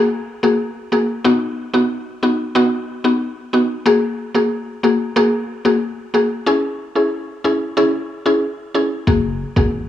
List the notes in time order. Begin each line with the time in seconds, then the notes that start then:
Already playing: A#3 F#4 G#4
0.43 A#3 F#4 G#4
0.92 A#3 F#4 G#4
1.25 B3 D#4 F#4
1.73 B3 D#4 F#4
2.23 B3 D#4 F#4
2.55 B3 D#4 F#4
3.04 B3 D#4 F#4
3.53 B3 D#4 F#4
3.86 A#3 F#4 G#4
4.34 A#3 F#4 G#4
4.83 A#3 F#4 G#4
5.16 A#3 F#4 G#4
5.65 A#3 F#4 G#4
6.14 A#3 F#4 G#4
6.46 C#4 E4 G#4
6.95 C#4 E4 G#4
7.44 C#4 E4 G#4
7.77 C#4 E4 G#4
8.26 C#4 E4 G#4
8.75 C#4 E4 G#4
9.07 F#1 A#3 F#4 G#4, kick
9.56 G#1 A#3 F#4 G#4, kick